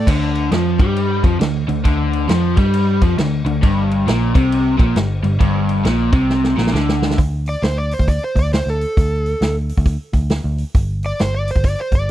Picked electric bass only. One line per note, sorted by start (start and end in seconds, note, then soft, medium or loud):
0.07 0.48 D2 medium
0.51 0.77 F2 medium
0.80 1.21 G2 loud
1.24 1.39 F2 loud
1.40 1.66 D2 medium
1.68 1.84 D2 medium
1.85 2.26 D2 medium
2.29 2.55 F2 medium
2.58 2.99 G2 loud
3.02 3.17 F2 loud
3.17 3.44 D2 medium
3.45 3.61 D2 medium
3.63 4.04 G1 loud
4.07 4.33 A#1 loud
4.35 4.77 C2 loud
4.80 4.95 A#1 loud
4.96 5.22 G1 medium
5.24 5.39 G1 medium
5.40 5.82 G1 medium
5.85 6.11 A#1 loud
6.12 6.54 C2 loud
6.58 6.73 A#1 medium
6.74 7.15 D2 medium
7.18 7.55 D2 loud
7.63 7.92 D2 medium
7.99 8.17 D2 medium
8.35 8.60 D2 loud
8.66 8.84 D2 medium
8.97 9.33 D2 medium
9.41 9.71 D2 medium
9.78 9.96 D2 medium
10.13 10.38 D2 medium
10.44 10.63 D2 medium
10.75 11.11 G1 loud
11.21 11.50 G1 loud
11.55 11.74 G1 medium
11.92 12.11 G1 loud